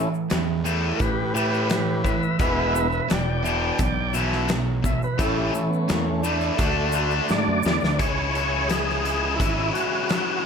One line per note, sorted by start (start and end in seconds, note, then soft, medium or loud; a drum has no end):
0.00 0.28 A2 medium
0.00 0.28 E3 medium
0.14 shaker soft
0.30 0.91 E2 loud
0.30 0.63 A2 medium
0.30 0.63 E3 medium
0.30 snare loud
0.30 closed hi-hat medium
0.30 shaker medium
0.65 0.99 A2 loud
0.65 0.99 E3 medium
0.65 0.99 A3 loud
0.65 shaker medium
0.96 1.01 A#4 medium
0.96 kick loud
0.96 closed hi-hat medium
1.00 2.19 A2 loud
1.00 1.33 A2 medium
1.00 1.33 E3 medium
1.00 1.33 G4 medium
1.00 1.34 B4 medium
1.00 shaker medium
1.34 1.68 A2 medium
1.34 1.69 E3 medium
1.34 1.69 A3 loud
1.34 1.68 G4 medium
1.34 1.69 B4 medium
1.34 shaker medium
1.54 shaker soft
1.69 2.02 A2 medium
1.69 2.02 E3 medium
1.69 2.03 G4 medium
1.69 2.02 B4 medium
1.69 snare loud
1.69 closed hi-hat medium
1.69 shaker medium
2.03 2.37 A2 medium
2.03 2.38 E3 medium
2.03 2.37 B4 medium
2.03 2.39 E5 medium
2.03 kick medium
2.03 shaker medium
2.23 shaker soft
2.39 3.00 E1 loud
2.39 2.73 E2 loud
2.39 2.74 B2 loud
2.39 2.74 E3 loud
2.39 2.87 G#3 medium
2.39 2.87 B3 soft
2.39 2.87 E4 medium
2.39 2.73 B4 medium
2.39 2.74 E5 medium
2.39 kick loud
2.39 closed hi-hat medium
2.39 shaker medium
2.75 3.07 E2 medium
2.75 3.07 B2 medium
2.75 3.08 B4 medium
2.75 3.10 E5 medium
2.75 shaker medium
2.92 shaker soft
3.10 3.70 E1 medium
3.10 3.42 E2 medium
3.10 3.42 B2 medium
3.10 3.43 D5 medium
3.10 3.44 G5 medium
3.10 snare loud
3.10 closed hi-hat medium
3.10 shaker medium
3.44 3.78 E2 loud
3.44 3.77 B2 loud
3.44 3.78 E3 loud
3.44 3.78 D5 medium
3.44 3.79 G5 medium
3.44 shaker medium
3.79 4.99 B1 medium
3.79 4.11 E2 medium
3.79 4.11 B2 medium
3.79 4.14 D5 medium
3.79 4.16 G5 medium
3.79 kick loud
3.79 closed hi-hat medium
3.79 shaker medium
4.13 4.47 E2 medium
4.13 4.48 B2 medium
4.13 4.48 E3 medium
4.13 shaker medium
4.19 4.51 E5 medium
4.32 snare soft
4.48 4.81 E2 medium
4.48 4.81 B2 medium
4.48 snare loud
4.48 closed hi-hat medium
4.48 shaker medium
4.82 5.16 E2 medium
4.82 5.16 B2 medium
4.82 5.02 E5 medium
4.82 kick medium
4.82 shaker medium
5.02 5.20 B4 medium
5.02 shaker soft
5.18 5.50 A1 medium
5.18 5.52 A2 loud
5.18 5.53 E3 medium
5.18 5.53 A3 loud
5.18 6.03 A3 medium
5.18 6.21 C#4 medium
5.18 5.52 E4 medium
5.18 5.37 A4 medium
5.18 kick loud
5.18 closed hi-hat medium
5.18 shaker medium
5.38 5.54 G4 medium
5.53 5.86 A2 medium
5.53 5.86 E3 medium
5.53 5.70 E4 medium
5.53 shaker medium
5.70 5.88 B3 medium
5.70 shaker soft
5.88 6.50 E2 loud
5.88 6.22 A2 medium
5.88 6.22 E3 medium
5.88 6.06 A#3 medium
5.88 snare loud
5.88 closed hi-hat medium
5.88 shaker medium
6.04 6.23 A3 medium
6.23 6.57 A2 loud
6.23 6.58 E3 loud
6.23 6.58 A3 loud
6.23 6.57 D4 medium
6.23 shaker loud
6.41 shaker soft
6.57 7.19 D2 medium
6.57 6.93 D3 medium
6.57 7.60 A3 medium
6.57 6.93 A3 loud
6.57 7.60 D4 medium
6.57 6.93 D4 loud
6.57 7.61 F#4 medium
6.57 kick loud
6.57 closed hi-hat medium
6.57 shaker medium
6.92 7.28 D3 medium
6.92 7.28 A3 medium
6.92 7.29 D4 loud
6.92 shaker medium
7.11 shaker soft
7.29 7.46 G#2 medium
7.29 7.62 D3 medium
7.29 7.62 A3 medium
7.29 8.03 D5 loud
7.29 snare medium
7.29 shaker medium
7.48 7.64 F#2 medium
7.63 7.82 E2 medium
7.63 7.97 D3 medium
7.63 7.97 A3 medium
7.63 snare medium
7.63 shaker medium
7.80 7.99 D2 medium
7.80 snare medium
7.80 shaker soft
7.98 9.42 C#2 medium
7.98 8.33 C#3 medium
7.98 8.34 E3 medium
7.98 10.46 G#3 medium
7.98 8.34 G#3 medium
7.98 10.46 C#4 medium
7.98 8.34 C#4 loud
7.98 10.46 E4 medium
7.98 8.35 E4 medium
7.98 10.46 G#4 medium
7.98 8.72 C#5 medium
7.98 kick loud
7.98 closed hi-hat loud
8.34 8.68 C#3 medium
8.34 8.69 E3 medium
8.34 8.70 G#3 medium
8.34 8.70 C#4 medium
8.34 8.70 E4 loud
8.34 closed hi-hat medium
8.68 9.02 C#3 medium
8.68 9.04 E3 medium
8.68 9.03 G#3 medium
8.68 9.03 C#4 medium
8.68 9.04 E4 medium
8.68 9.35 G#4 loud
8.68 snare loud
8.68 closed hi-hat medium
8.90 snare soft
9.03 9.37 C#3 medium
9.03 9.38 E3 loud
9.03 9.38 G#3 medium
9.03 9.39 C#4 medium
9.03 9.39 E4 medium
9.03 closed hi-hat medium
9.36 9.73 C#3 medium
9.36 9.72 E3 medium
9.36 9.74 G#3 medium
9.36 9.74 C#4 loud
9.36 9.71 E4 medium
9.36 kick loud
9.40 9.70 G#1 medium
9.40 9.74 E4 loud
9.40 closed hi-hat loud
9.73 10.08 C#3 medium
9.73 10.08 E3 medium
9.73 10.09 G#3 medium
9.73 10.09 C#4 medium
9.73 10.10 E4 medium
9.73 10.46 F#4 medium
9.73 closed hi-hat medium
10.09 10.43 C#3 medium
10.09 10.44 E3 medium
10.09 10.44 G#3 medium
10.09 10.45 C#4 medium
10.09 10.45 E4 medium
10.09 snare loud
10.09 closed hi-hat medium